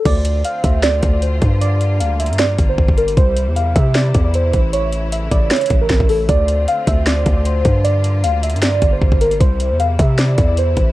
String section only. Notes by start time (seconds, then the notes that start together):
0.05 D3 A3 C4 F4
1.61 G3 A#3
3.17 C3 E3 E4
4.73 C#3 A3
6.29 D3 C4 F4
7.85 G3 A#3
9.41 C3 E3 E4